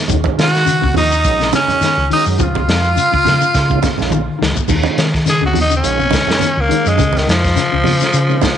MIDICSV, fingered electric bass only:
0, 0, Header, 1, 2, 480
1, 0, Start_track
1, 0, Tempo, 575264
1, 71, Time_signature, 4, 2, 24, 8
1, 7157, End_track
2, 0, Start_track
2, 0, Title_t, "Fingered electric bass"
2, 0, Program_c, 0, 33
2, 78, Note_on_c, 0, 39, 100
2, 202, Note_off_c, 0, 39, 0
2, 319, Note_on_c, 0, 51, 95
2, 670, Note_off_c, 0, 51, 0
2, 698, Note_on_c, 0, 37, 78
2, 793, Note_off_c, 0, 37, 0
2, 798, Note_on_c, 0, 39, 85
2, 1023, Note_off_c, 0, 39, 0
2, 1039, Note_on_c, 0, 34, 99
2, 1263, Note_off_c, 0, 34, 0
2, 1648, Note_on_c, 0, 37, 90
2, 1748, Note_off_c, 0, 37, 0
2, 1888, Note_on_c, 0, 42, 81
2, 1989, Note_off_c, 0, 42, 0
2, 2001, Note_on_c, 0, 37, 110
2, 2225, Note_off_c, 0, 37, 0
2, 2239, Note_on_c, 0, 41, 102
2, 2464, Note_off_c, 0, 41, 0
2, 2615, Note_on_c, 0, 37, 77
2, 2713, Note_off_c, 0, 37, 0
2, 2727, Note_on_c, 0, 49, 86
2, 2849, Note_off_c, 0, 49, 0
2, 2956, Note_on_c, 0, 49, 98
2, 3183, Note_off_c, 0, 49, 0
2, 3336, Note_on_c, 0, 34, 93
2, 3561, Note_off_c, 0, 34, 0
2, 3684, Note_on_c, 0, 37, 94
2, 3804, Note_off_c, 0, 37, 0
2, 3920, Note_on_c, 0, 39, 117
2, 4046, Note_off_c, 0, 39, 0
2, 4154, Note_on_c, 0, 51, 90
2, 4509, Note_off_c, 0, 51, 0
2, 4534, Note_on_c, 0, 37, 93
2, 4632, Note_off_c, 0, 37, 0
2, 4638, Note_on_c, 0, 39, 86
2, 4862, Note_off_c, 0, 39, 0
2, 4867, Note_on_c, 0, 34, 92
2, 5098, Note_off_c, 0, 34, 0
2, 5483, Note_on_c, 0, 37, 88
2, 5586, Note_off_c, 0, 37, 0
2, 5725, Note_on_c, 0, 42, 85
2, 5827, Note_off_c, 0, 42, 0
2, 5839, Note_on_c, 0, 37, 105
2, 6064, Note_off_c, 0, 37, 0
2, 6072, Note_on_c, 0, 41, 101
2, 6300, Note_off_c, 0, 41, 0
2, 6451, Note_on_c, 0, 37, 84
2, 6544, Note_off_c, 0, 37, 0
2, 6549, Note_on_c, 0, 49, 91
2, 6678, Note_off_c, 0, 49, 0
2, 6789, Note_on_c, 0, 49, 116
2, 7017, Note_off_c, 0, 49, 0
2, 7157, End_track
0, 0, End_of_file